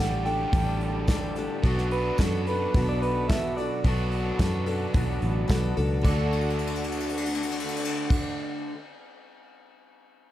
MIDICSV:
0, 0, Header, 1, 7, 480
1, 0, Start_track
1, 0, Key_signature, 2, "major"
1, 0, Tempo, 549954
1, 1430, Time_signature, 4, 2, 24, 8
1, 9006, End_track
2, 0, Start_track
2, 0, Title_t, "Clean electric guitar"
2, 0, Program_c, 0, 27
2, 0, Note_on_c, 0, 78, 92
2, 216, Note_off_c, 0, 78, 0
2, 220, Note_on_c, 0, 79, 89
2, 1151, Note_off_c, 0, 79, 0
2, 1676, Note_on_c, 0, 71, 86
2, 1897, Note_off_c, 0, 71, 0
2, 1917, Note_on_c, 0, 69, 89
2, 2138, Note_off_c, 0, 69, 0
2, 2157, Note_on_c, 0, 71, 86
2, 2490, Note_off_c, 0, 71, 0
2, 2520, Note_on_c, 0, 74, 100
2, 2633, Note_off_c, 0, 74, 0
2, 2637, Note_on_c, 0, 71, 92
2, 2859, Note_off_c, 0, 71, 0
2, 2869, Note_on_c, 0, 76, 101
2, 3111, Note_off_c, 0, 76, 0
2, 3115, Note_on_c, 0, 74, 98
2, 5001, Note_off_c, 0, 74, 0
2, 5282, Note_on_c, 0, 74, 88
2, 7136, Note_off_c, 0, 74, 0
2, 9006, End_track
3, 0, Start_track
3, 0, Title_t, "Accordion"
3, 0, Program_c, 1, 21
3, 0, Note_on_c, 1, 67, 76
3, 0, Note_on_c, 1, 74, 73
3, 0, Note_on_c, 1, 81, 63
3, 0, Note_on_c, 1, 86, 82
3, 1395, Note_off_c, 1, 67, 0
3, 1395, Note_off_c, 1, 74, 0
3, 1432, Note_on_c, 1, 78, 73
3, 1437, Note_on_c, 1, 71, 82
3, 5240, Note_off_c, 1, 86, 0
3, 5242, Note_off_c, 1, 78, 0
3, 5244, Note_off_c, 1, 71, 0
3, 5244, Note_off_c, 1, 81, 0
3, 5282, Note_on_c, 1, 66, 62
3, 5286, Note_on_c, 1, 62, 74
3, 5287, Note_on_c, 1, 69, 73
3, 5291, Note_on_c, 1, 78, 78
3, 7135, Note_off_c, 1, 66, 0
3, 7138, Note_off_c, 1, 62, 0
3, 7138, Note_off_c, 1, 69, 0
3, 7140, Note_off_c, 1, 78, 0
3, 9006, End_track
4, 0, Start_track
4, 0, Title_t, "Steel-string acoustic guitar"
4, 0, Program_c, 2, 25
4, 0, Note_on_c, 2, 55, 61
4, 0, Note_on_c, 2, 62, 59
4, 0, Note_on_c, 2, 67, 65
4, 0, Note_on_c, 2, 69, 60
4, 212, Note_off_c, 2, 69, 0
4, 220, Note_off_c, 2, 67, 0
4, 221, Note_off_c, 2, 55, 0
4, 223, Note_on_c, 2, 69, 52
4, 226, Note_off_c, 2, 62, 0
4, 231, Note_on_c, 2, 67, 46
4, 237, Note_on_c, 2, 62, 45
4, 245, Note_on_c, 2, 55, 46
4, 450, Note_off_c, 2, 55, 0
4, 456, Note_off_c, 2, 62, 0
4, 460, Note_on_c, 2, 55, 59
4, 464, Note_off_c, 2, 67, 0
4, 465, Note_off_c, 2, 69, 0
4, 466, Note_on_c, 2, 62, 67
4, 474, Note_on_c, 2, 67, 80
4, 480, Note_on_c, 2, 69, 69
4, 928, Note_off_c, 2, 55, 0
4, 938, Note_on_c, 2, 55, 68
4, 944, Note_off_c, 2, 67, 0
4, 945, Note_off_c, 2, 62, 0
4, 948, Note_on_c, 2, 62, 76
4, 954, Note_off_c, 2, 69, 0
4, 955, Note_on_c, 2, 67, 66
4, 958, Note_on_c, 2, 69, 80
4, 1179, Note_off_c, 2, 69, 0
4, 1184, Note_off_c, 2, 55, 0
4, 1187, Note_off_c, 2, 67, 0
4, 1189, Note_off_c, 2, 62, 0
4, 1189, Note_on_c, 2, 69, 63
4, 1197, Note_on_c, 2, 67, 53
4, 1208, Note_on_c, 2, 62, 51
4, 1209, Note_on_c, 2, 55, 55
4, 1427, Note_off_c, 2, 62, 0
4, 1429, Note_off_c, 2, 55, 0
4, 1430, Note_off_c, 2, 69, 0
4, 1432, Note_on_c, 2, 59, 73
4, 1434, Note_off_c, 2, 67, 0
4, 1438, Note_on_c, 2, 62, 84
4, 1444, Note_on_c, 2, 66, 93
4, 1448, Note_on_c, 2, 69, 83
4, 1901, Note_off_c, 2, 59, 0
4, 1912, Note_on_c, 2, 59, 59
4, 1916, Note_off_c, 2, 62, 0
4, 1919, Note_on_c, 2, 62, 61
4, 1922, Note_off_c, 2, 66, 0
4, 1925, Note_on_c, 2, 66, 67
4, 1933, Note_off_c, 2, 69, 0
4, 1937, Note_on_c, 2, 69, 71
4, 2152, Note_off_c, 2, 59, 0
4, 2155, Note_off_c, 2, 69, 0
4, 2156, Note_off_c, 2, 62, 0
4, 2159, Note_off_c, 2, 66, 0
4, 2165, Note_on_c, 2, 69, 55
4, 2180, Note_on_c, 2, 66, 46
4, 2186, Note_on_c, 2, 62, 37
4, 2395, Note_off_c, 2, 62, 0
4, 2399, Note_off_c, 2, 69, 0
4, 2399, Note_on_c, 2, 59, 64
4, 2403, Note_off_c, 2, 66, 0
4, 2406, Note_on_c, 2, 62, 63
4, 2414, Note_on_c, 2, 66, 65
4, 2422, Note_on_c, 2, 69, 70
4, 2872, Note_off_c, 2, 59, 0
4, 2883, Note_on_c, 2, 59, 64
4, 2891, Note_off_c, 2, 62, 0
4, 2893, Note_off_c, 2, 66, 0
4, 2894, Note_on_c, 2, 62, 62
4, 2896, Note_on_c, 2, 66, 68
4, 2902, Note_off_c, 2, 69, 0
4, 2906, Note_on_c, 2, 69, 67
4, 3119, Note_off_c, 2, 59, 0
4, 3119, Note_off_c, 2, 69, 0
4, 3124, Note_off_c, 2, 62, 0
4, 3125, Note_off_c, 2, 66, 0
4, 3129, Note_on_c, 2, 69, 55
4, 3140, Note_on_c, 2, 66, 55
4, 3150, Note_on_c, 2, 62, 49
4, 3354, Note_off_c, 2, 62, 0
4, 3359, Note_off_c, 2, 66, 0
4, 3360, Note_on_c, 2, 59, 74
4, 3362, Note_off_c, 2, 69, 0
4, 3365, Note_on_c, 2, 62, 78
4, 3370, Note_on_c, 2, 66, 72
4, 3376, Note_on_c, 2, 69, 74
4, 3822, Note_off_c, 2, 59, 0
4, 3831, Note_off_c, 2, 62, 0
4, 3832, Note_on_c, 2, 59, 70
4, 3840, Note_off_c, 2, 66, 0
4, 3842, Note_on_c, 2, 62, 68
4, 3846, Note_off_c, 2, 69, 0
4, 3851, Note_on_c, 2, 66, 69
4, 3856, Note_on_c, 2, 69, 70
4, 4059, Note_off_c, 2, 69, 0
4, 4069, Note_on_c, 2, 69, 57
4, 4073, Note_off_c, 2, 66, 0
4, 4074, Note_off_c, 2, 59, 0
4, 4079, Note_off_c, 2, 62, 0
4, 4084, Note_on_c, 2, 66, 54
4, 4093, Note_on_c, 2, 62, 42
4, 4306, Note_off_c, 2, 62, 0
4, 4310, Note_on_c, 2, 59, 67
4, 4313, Note_off_c, 2, 69, 0
4, 4316, Note_off_c, 2, 66, 0
4, 4316, Note_on_c, 2, 62, 73
4, 4327, Note_on_c, 2, 66, 78
4, 4330, Note_on_c, 2, 69, 68
4, 4770, Note_off_c, 2, 59, 0
4, 4780, Note_on_c, 2, 59, 69
4, 4781, Note_off_c, 2, 62, 0
4, 4786, Note_off_c, 2, 66, 0
4, 4792, Note_on_c, 2, 62, 71
4, 4795, Note_off_c, 2, 69, 0
4, 4797, Note_on_c, 2, 66, 67
4, 4805, Note_on_c, 2, 69, 75
4, 5025, Note_off_c, 2, 69, 0
4, 5028, Note_off_c, 2, 59, 0
4, 5034, Note_off_c, 2, 62, 0
4, 5035, Note_on_c, 2, 69, 66
4, 5036, Note_off_c, 2, 66, 0
4, 5047, Note_on_c, 2, 66, 55
4, 5055, Note_on_c, 2, 62, 50
4, 5249, Note_on_c, 2, 50, 69
4, 5275, Note_off_c, 2, 69, 0
4, 5281, Note_off_c, 2, 66, 0
4, 5282, Note_on_c, 2, 57, 68
4, 5285, Note_off_c, 2, 62, 0
4, 5309, Note_on_c, 2, 62, 78
4, 5327, Note_on_c, 2, 66, 80
4, 5356, Note_on_c, 2, 69, 81
4, 7644, Note_off_c, 2, 50, 0
4, 7644, Note_off_c, 2, 57, 0
4, 7644, Note_off_c, 2, 62, 0
4, 7644, Note_off_c, 2, 66, 0
4, 7644, Note_off_c, 2, 69, 0
4, 9006, End_track
5, 0, Start_track
5, 0, Title_t, "Overdriven electric guitar"
5, 0, Program_c, 3, 29
5, 0, Note_on_c, 3, 45, 90
5, 0, Note_on_c, 3, 50, 102
5, 0, Note_on_c, 3, 55, 93
5, 0, Note_on_c, 3, 62, 100
5, 0, Note_on_c, 3, 67, 106
5, 1411, Note_off_c, 3, 45, 0
5, 1417, Note_off_c, 3, 50, 0
5, 1419, Note_on_c, 3, 47, 94
5, 1420, Note_off_c, 3, 55, 0
5, 1428, Note_off_c, 3, 67, 0
5, 1429, Note_on_c, 3, 54, 91
5, 1436, Note_on_c, 3, 59, 91
5, 1444, Note_off_c, 3, 62, 0
5, 1447, Note_on_c, 3, 62, 107
5, 1455, Note_on_c, 3, 66, 107
5, 3335, Note_off_c, 3, 47, 0
5, 3344, Note_off_c, 3, 59, 0
5, 3357, Note_on_c, 3, 47, 88
5, 3362, Note_off_c, 3, 54, 0
5, 3365, Note_on_c, 3, 54, 92
5, 3373, Note_on_c, 3, 59, 93
5, 3379, Note_off_c, 3, 62, 0
5, 3382, Note_off_c, 3, 66, 0
5, 3382, Note_on_c, 3, 62, 105
5, 3385, Note_on_c, 3, 66, 112
5, 5261, Note_off_c, 3, 54, 0
5, 5262, Note_off_c, 3, 47, 0
5, 5264, Note_on_c, 3, 50, 92
5, 5268, Note_off_c, 3, 62, 0
5, 5270, Note_off_c, 3, 59, 0
5, 5276, Note_off_c, 3, 66, 0
5, 5279, Note_on_c, 3, 62, 95
5, 5287, Note_on_c, 3, 66, 109
5, 5299, Note_on_c, 3, 69, 96
5, 7615, Note_off_c, 3, 50, 0
5, 7615, Note_off_c, 3, 62, 0
5, 7615, Note_off_c, 3, 66, 0
5, 7615, Note_off_c, 3, 69, 0
5, 9006, End_track
6, 0, Start_track
6, 0, Title_t, "Fingered electric bass"
6, 0, Program_c, 4, 33
6, 0, Note_on_c, 4, 33, 91
6, 390, Note_off_c, 4, 33, 0
6, 463, Note_on_c, 4, 33, 96
6, 1283, Note_off_c, 4, 33, 0
6, 1428, Note_on_c, 4, 35, 94
6, 1838, Note_off_c, 4, 35, 0
6, 1910, Note_on_c, 4, 42, 93
6, 2319, Note_off_c, 4, 42, 0
6, 2397, Note_on_c, 4, 35, 89
6, 3212, Note_off_c, 4, 35, 0
6, 3355, Note_on_c, 4, 35, 88
6, 3763, Note_off_c, 4, 35, 0
6, 3836, Note_on_c, 4, 42, 97
6, 4243, Note_off_c, 4, 42, 0
6, 4316, Note_on_c, 4, 35, 87
6, 4520, Note_off_c, 4, 35, 0
6, 4561, Note_on_c, 4, 33, 97
6, 4774, Note_off_c, 4, 33, 0
6, 4796, Note_on_c, 4, 35, 84
6, 5012, Note_off_c, 4, 35, 0
6, 5039, Note_on_c, 4, 37, 84
6, 5253, Note_off_c, 4, 37, 0
6, 5277, Note_on_c, 4, 38, 98
6, 7133, Note_off_c, 4, 38, 0
6, 9006, End_track
7, 0, Start_track
7, 0, Title_t, "Drums"
7, 223, Note_on_c, 9, 46, 63
7, 311, Note_off_c, 9, 46, 0
7, 461, Note_on_c, 9, 46, 90
7, 462, Note_on_c, 9, 36, 121
7, 549, Note_off_c, 9, 46, 0
7, 550, Note_off_c, 9, 36, 0
7, 703, Note_on_c, 9, 46, 56
7, 790, Note_off_c, 9, 46, 0
7, 941, Note_on_c, 9, 46, 76
7, 944, Note_on_c, 9, 36, 110
7, 946, Note_on_c, 9, 54, 84
7, 950, Note_on_c, 9, 38, 103
7, 1029, Note_off_c, 9, 46, 0
7, 1032, Note_off_c, 9, 36, 0
7, 1033, Note_off_c, 9, 54, 0
7, 1037, Note_off_c, 9, 38, 0
7, 1183, Note_on_c, 9, 46, 60
7, 1271, Note_off_c, 9, 46, 0
7, 1427, Note_on_c, 9, 46, 74
7, 1428, Note_on_c, 9, 36, 104
7, 1514, Note_off_c, 9, 46, 0
7, 1515, Note_off_c, 9, 36, 0
7, 1559, Note_on_c, 9, 38, 30
7, 1646, Note_off_c, 9, 38, 0
7, 1667, Note_on_c, 9, 46, 60
7, 1754, Note_off_c, 9, 46, 0
7, 1902, Note_on_c, 9, 54, 92
7, 1910, Note_on_c, 9, 46, 76
7, 1911, Note_on_c, 9, 36, 105
7, 1919, Note_on_c, 9, 38, 115
7, 1989, Note_off_c, 9, 54, 0
7, 1997, Note_off_c, 9, 46, 0
7, 1998, Note_off_c, 9, 36, 0
7, 2006, Note_off_c, 9, 38, 0
7, 2153, Note_on_c, 9, 46, 62
7, 2241, Note_off_c, 9, 46, 0
7, 2396, Note_on_c, 9, 36, 124
7, 2396, Note_on_c, 9, 46, 93
7, 2483, Note_off_c, 9, 36, 0
7, 2484, Note_off_c, 9, 46, 0
7, 2636, Note_on_c, 9, 46, 59
7, 2724, Note_off_c, 9, 46, 0
7, 2875, Note_on_c, 9, 54, 91
7, 2876, Note_on_c, 9, 46, 87
7, 2877, Note_on_c, 9, 36, 114
7, 2885, Note_on_c, 9, 38, 118
7, 2962, Note_off_c, 9, 54, 0
7, 2963, Note_off_c, 9, 46, 0
7, 2964, Note_off_c, 9, 36, 0
7, 2972, Note_off_c, 9, 38, 0
7, 3119, Note_on_c, 9, 46, 60
7, 3206, Note_off_c, 9, 46, 0
7, 3353, Note_on_c, 9, 46, 91
7, 3356, Note_on_c, 9, 36, 110
7, 3440, Note_off_c, 9, 46, 0
7, 3443, Note_off_c, 9, 36, 0
7, 3589, Note_on_c, 9, 46, 62
7, 3677, Note_off_c, 9, 46, 0
7, 3833, Note_on_c, 9, 46, 85
7, 3836, Note_on_c, 9, 36, 117
7, 3836, Note_on_c, 9, 54, 92
7, 3842, Note_on_c, 9, 38, 122
7, 3920, Note_off_c, 9, 46, 0
7, 3923, Note_off_c, 9, 36, 0
7, 3923, Note_off_c, 9, 54, 0
7, 3929, Note_off_c, 9, 38, 0
7, 4073, Note_on_c, 9, 46, 66
7, 4160, Note_off_c, 9, 46, 0
7, 4311, Note_on_c, 9, 46, 91
7, 4315, Note_on_c, 9, 36, 124
7, 4398, Note_off_c, 9, 46, 0
7, 4403, Note_off_c, 9, 36, 0
7, 4552, Note_on_c, 9, 46, 55
7, 4639, Note_off_c, 9, 46, 0
7, 4795, Note_on_c, 9, 46, 76
7, 4795, Note_on_c, 9, 54, 105
7, 4797, Note_on_c, 9, 36, 113
7, 4804, Note_on_c, 9, 38, 113
7, 4882, Note_off_c, 9, 46, 0
7, 4882, Note_off_c, 9, 54, 0
7, 4884, Note_off_c, 9, 36, 0
7, 4891, Note_off_c, 9, 38, 0
7, 5037, Note_on_c, 9, 46, 56
7, 5125, Note_off_c, 9, 46, 0
7, 5276, Note_on_c, 9, 49, 95
7, 5277, Note_on_c, 9, 36, 109
7, 5279, Note_on_c, 9, 54, 81
7, 5363, Note_off_c, 9, 49, 0
7, 5364, Note_off_c, 9, 36, 0
7, 5366, Note_off_c, 9, 54, 0
7, 5520, Note_on_c, 9, 57, 45
7, 5593, Note_on_c, 9, 51, 46
7, 5607, Note_off_c, 9, 57, 0
7, 5670, Note_on_c, 9, 57, 49
7, 5680, Note_off_c, 9, 51, 0
7, 5747, Note_on_c, 9, 51, 58
7, 5758, Note_off_c, 9, 57, 0
7, 5822, Note_on_c, 9, 57, 58
7, 5834, Note_off_c, 9, 51, 0
7, 5894, Note_on_c, 9, 51, 58
7, 5909, Note_off_c, 9, 57, 0
7, 5968, Note_on_c, 9, 57, 63
7, 5982, Note_off_c, 9, 51, 0
7, 6038, Note_on_c, 9, 51, 64
7, 6055, Note_off_c, 9, 57, 0
7, 6112, Note_on_c, 9, 57, 73
7, 6125, Note_off_c, 9, 51, 0
7, 6187, Note_on_c, 9, 51, 68
7, 6199, Note_off_c, 9, 57, 0
7, 6260, Note_on_c, 9, 57, 80
7, 6274, Note_off_c, 9, 51, 0
7, 6335, Note_on_c, 9, 51, 84
7, 6347, Note_off_c, 9, 57, 0
7, 6409, Note_on_c, 9, 57, 69
7, 6423, Note_off_c, 9, 51, 0
7, 6481, Note_on_c, 9, 51, 80
7, 6497, Note_off_c, 9, 57, 0
7, 6557, Note_on_c, 9, 57, 77
7, 6568, Note_off_c, 9, 51, 0
7, 6631, Note_on_c, 9, 51, 87
7, 6644, Note_off_c, 9, 57, 0
7, 6706, Note_on_c, 9, 57, 91
7, 6718, Note_off_c, 9, 51, 0
7, 6776, Note_on_c, 9, 51, 89
7, 6794, Note_off_c, 9, 57, 0
7, 6848, Note_on_c, 9, 57, 99
7, 6863, Note_off_c, 9, 51, 0
7, 6936, Note_off_c, 9, 57, 0
7, 7073, Note_on_c, 9, 36, 106
7, 7076, Note_on_c, 9, 49, 107
7, 7161, Note_off_c, 9, 36, 0
7, 7163, Note_off_c, 9, 49, 0
7, 9006, End_track
0, 0, End_of_file